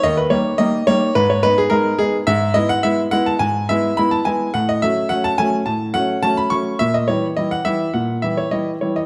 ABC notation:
X:1
M:4/4
L:1/16
Q:1/4=106
K:G#m
V:1 name="Grand piano"
d B c2 d2 c2 B c B G A2 G2 | [K:E] e2 d f e2 f a g2 e2 b a g2 | f d e2 f a g2 a2 f2 a b c'2 | e d c2 d f e2 f2 e c d2 c d |]
V:2 name="Grand piano"
D,,2 [=G,A,D]2 [G,A,D]2 [G,A,D]2 ^G,,2 [^G,B,D]2 [G,B,D]2 [G,B,D]2 | [K:E] G,,2 [G,B,E]2 [G,B,E]2 [G,B,E]2 G,,2 [G,B,E]2 [G,B,E]2 [G,B,E]2 | A,,2 [F,A,C]2 [F,A,C]2 [F,A,C]2 A,,2 [F,A,C]2 [F,A,C]2 [F,A,C]2 | ^A,,2 [E,=G,E]2 [E,G,E]2 [E,G,E]2 A,,2 [E,G,E]2 [E,G,E]2 [E,G,E]2 |]